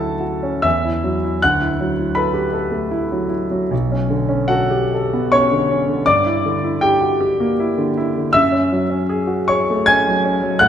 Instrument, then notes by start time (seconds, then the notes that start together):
grand piano
Already playing: D2 F#3 F#4 A4 A5
0.00 E4
0.20 F#4
0.43 C#4
0.62 E2 E5 E6
0.85 E4
1.04 F#3
1.24 E4
1.42 D2 F#5 F#6
1.61 E4
1.80 F#3
1.99 E4
2.15 A4 B4 B5
2.34 G4
2.53 A4
2.71 A3
2.91 E4
3.12 F#3
3.29 E4
3.51 F#3
3.71 B1
3.92 C#4
4.10 D3
4.29 C#4
4.48 F#4 A4 F#5
4.71 G4
4.94 A4
5.13 B3
5.32 C#4 C#5 C#6
5.52 D3
5.71 C#4
5.89 D3
6.06 G2 D5 D6
6.26 E4
6.46 D3
6.64 E4
6.81 G4 G5
7.01 F#4
7.21 G4
7.40 A#3
7.60 E4
7.78 D3
7.97 E4
8.17 D3
8.33 F#2 E5 E6
8.52 C#4
8.72 F#3
8.90 C#4
9.09 G#4
9.27 F#4
9.48 G#4 C#5 C#6
9.70 A3
9.86 C#4 G#5 G#6
10.07 F#3
10.25 C#4
10.43 F#3
10.59 A2 F#5 F#6